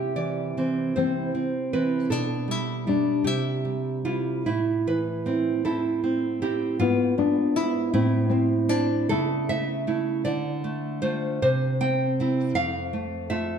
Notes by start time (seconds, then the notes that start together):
Already playing: C3 E4 G4
0.16 E3 D5
0.57 E3 C4
0.96 E3 C4 C5
1.35 C4
1.73 E3 C4 B4
2.10 B2 D4 A4
2.48 G3 E4
2.87 G3 D4
3.24 C3 E4 G4
3.65 G3
4.05 G3 E4 F4
4.46 A2 C4 E4
4.87 E3 B4
5.26 C4 E4
5.65 C4 E4 A4
6.04 C4
6.42 C4 E4 G4
6.79 G#2 B3 F4
7.18 B3 D4
7.56 B3 E4
7.94 A2 C4 E4
8.30 C4
8.69 C4 D4 E4
9.09 C#3 E4 A4
9.49 A3 E5
9.87 A3 E4
10.25 D3 D5
10.64 A3
11.02 A3 F4 C5
11.42 C3 C5
11.81 C4 G5
12.20 C4 E4
12.55 F2 C4 F5
12.93 A3
13.30 A3 F4 E5